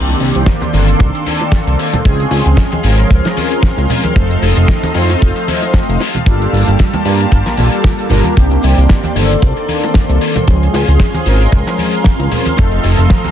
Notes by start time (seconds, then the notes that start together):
Already playing: C2 D#3 A#3 C4 D4 G4 D5 C6
0.09 closed hi-hat, high bongo
0.20 C2, open hi-hat
0.35 C2, closed hi-hat
0.46 kick, snare, closed hi-hat, high bongo
0.61 closed hi-hat, high conga
0.72 G1 D#3 A#3 C4 D4 A4, open hi-hat
0.88 closed hi-hat
0.99 C2, kick, closed hi-hat, high bongo
1.15 closed hi-hat
1.26 open hi-hat, high conga
1.41 closed hi-hat, high bongo
1.52 kick, snare, closed hi-hat
1.67 C2, closed hi-hat
1.79 open hi-hat
1.93 closed hi-hat, high bongo, high conga, low conga
2.04 C#2 F3 G#3 C4 C#4 G#4 F5 C6, kick, closed hi-hat
2.20 closed hi-hat
2.31 C#2, open hi-hat, high bongo
2.46 C#2, closed hi-hat
2.57 kick, snare, closed hi-hat
2.72 closed hi-hat, high conga
2.83 G#1 F3 G#3 C4 C#4 A#4, open hi-hat, high bongo
2.99 closed hi-hat
3.10 C#2, kick, closed hi-hat
3.25 snare, closed hi-hat, high bongo
3.37 open hi-hat, high conga
3.52 closed hi-hat
3.63 kick, snare, closed hi-hat
3.77 C#2, closed hi-hat, high bongo
3.90 open hi-hat, low conga
4.04 closed hi-hat, high conga
4.15 F1 F3 A3 C4 D#4 A4 D#5, kick, closed hi-hat, high bongo
4.31 closed hi-hat
4.42 F1, open hi-hat
4.57 F1, closed hi-hat
4.68 kick, snare, closed hi-hat, high bongo
4.83 closed hi-hat, high conga
4.94 F2 F3 A3 C4 D#4 C5, open hi-hat
5.10 closed hi-hat, high bongo
5.22 F1, kick, closed hi-hat
5.36 closed hi-hat
5.48 open hi-hat, high conga
5.62 closed hi-hat, high bongo
5.74 kick, snare, closed hi-hat
5.88 F1, closed hi-hat
6.00 A#3 G4 A5, open hi-hat, high bongo
6.15 closed hi-hat, high conga, low conga
6.26 G1 G3 A#3 D4 F4 A4, kick, closed hi-hat
6.42 closed hi-hat
6.53 G1, open hi-hat, high bongo
6.67 G1, closed hi-hat
6.79 kick, snare, closed hi-hat
6.93 closed hi-hat, high bongo, high conga
7.05 G2 G3 A#3 D4 F4 A#4, open hi-hat
7.21 closed hi-hat
7.32 G1, kick, closed hi-hat
7.46 A#1, snare, closed hi-hat, high bongo
7.57 A#1 G3 A#3 D4 F4 A4, open hi-hat, high conga
7.73 closed hi-hat
7.84 kick, snare, closed hi-hat, high bongo
7.99 closed hi-hat
8.09 G1 G3 A#3 D4 F4 A#4, open hi-hat, low conga
8.24 closed hi-hat, high conga
8.35 C2 D#3 A#3 C4 D4 G4 D5 C6, kick, closed hi-hat, shaker
8.51 closed hi-hat, high bongo
8.63 C2, open hi-hat, shaker
8.78 C2, closed hi-hat, shaker
8.89 kick, snare, closed hi-hat, high bongo, shaker
9.04 closed hi-hat, high conga
9.14 G1 D#3 A#3 C4 D4 A4, open hi-hat, shaker
9.30 closed hi-hat, shaker
9.42 C2, kick, closed hi-hat, high bongo, shaker
9.57 closed hi-hat
9.69 open hi-hat, high conga, shaker
9.83 closed hi-hat, high bongo, shaker
9.94 kick, snare, closed hi-hat, shaker
10.09 C2, closed hi-hat
10.21 open hi-hat, shaker
10.35 closed hi-hat, high bongo, high conga, low conga, shaker
10.47 C#2 F3 G#3 C4 C#4 G#4 F5, kick, closed hi-hat, shaker
10.63 closed hi-hat
10.73 C#2, open hi-hat, high bongo, shaker
10.88 C#2, closed hi-hat, shaker
11.00 kick, snare, closed hi-hat, shaker
11.14 closed hi-hat, high conga
11.25 G#1 F3 G#3 C4 C#4 A#4, open hi-hat, high bongo, shaker
11.41 closed hi-hat, shaker
11.52 C#2, kick, closed hi-hat, shaker
11.66 snare, closed hi-hat, high bongo
11.78 open hi-hat, high conga, shaker
11.93 closed hi-hat, shaker
12.04 kick, snare, closed hi-hat, shaker
12.19 C#2, closed hi-hat, high bongo
12.32 open hi-hat, low conga, shaker
12.46 closed hi-hat, high conga, shaker
12.57 F1 F3 A3 C4 D#4 A4 D#5, kick, closed hi-hat, high bongo, shaker
12.72 closed hi-hat
12.84 F1, open hi-hat, shaker
12.98 F1, closed hi-hat, shaker
13.10 kick, snare, closed hi-hat, high bongo, shaker
13.24 closed hi-hat, high conga